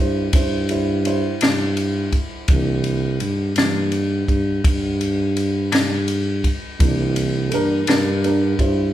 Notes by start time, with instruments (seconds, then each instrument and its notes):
Already playing: tuba G2
0.00 grand piano E4 C5
0.33 tuba G2, grand piano E4 C5, kick, snare, ride
0.69 grand piano E4 C5, ride
1.05 grand piano E4 C5, ride
1.41 tuba G2, clean electric guitar C3 E3 A#3 D4, snare, ride
1.77 ride
2.13 kick, ride
2.48 tuba C2, grand piano E3 A#3 D4, kick, ride
2.84 ride
3.20 tuba G2, ride
3.56 tuba G2, grand piano E3 A#3 D4, clean electric guitar E3 A#3 D4, snare, ride
3.60 clean electric guitar C3
3.92 ride
4.28 tuba G2, kick, ride
4.64 tuba G2, kick, ride
5.01 ride
5.37 ride
5.72 tuba G2, clean electric guitar C3 E3 A#3 D4, snare, ride
6.08 ride
6.44 kick, ride
6.79 tuba C2, grand piano E3 A#3 D4, kick, ride
7.16 ride
7.50 tuba G2, grand piano D4 A4, ride
7.54 grand piano A#4
7.87 tuba G2, clean electric guitar C3 E3 A#3 D4, grand piano D4 A#4, snare, ride
8.24 grand piano D4 A#4, ride
8.59 tuba G2, grand piano E4 C5, kick, ride